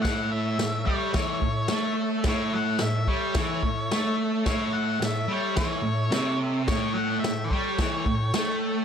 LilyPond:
<<
  \new Staff \with { instrumentName = "Lead electric guitar" } { \time 4/4 \key a \mixolydian \tempo 4 = 108 fis''8 e''4 cis''8 cis''4. r8 | cis''8 fis''8 e''8 cis''2 r8 | cis''8 fis''8 e''8 cis''8 cis''4. r8 | cis''8 fis''8 e''8 cis''2 r8 | }
  \new Staff \with { instrumentName = "Transistor combo organ" } { \time 4/4 \key a \mixolydian <a' cis'' e''>1 | <a' cis'' e''>1~ | <a' cis'' e''>1 | <a' cis'' g''>1 | }
  \new Staff \with { instrumentName = "Distorted electric guitar" } { \clef bass \time 4/4 \key a \mixolydian a,4 a,8 g8 e8 a,8 a4 | a,4 a,8 g8 e8 a,8 a4 | a,4 a,8 g8 e8 a,8 c4 | a,4 a,8 g8 e8 a,8 a4 | }
  \new DrumStaff \with { instrumentName = "Drums" } \drummode { \time 4/4 <cymc bd sn>4 <cymc sn>8 bd8 <cymc bd sn>8 bd8 <cymc sn>4 | <cymc bd sn>4 <cymc sn>8 bd8 <cymc bd sn>8 bd8 <cymc sn>4 | <cymc bd sn>4 <cymc sn>4 <cymc bd sn>4 <cymc sn>4 | <cymc bd sn>4 <cymc sn>8 bd8 <cymc bd sn>8 bd8 <cymc sn>4 | }
>>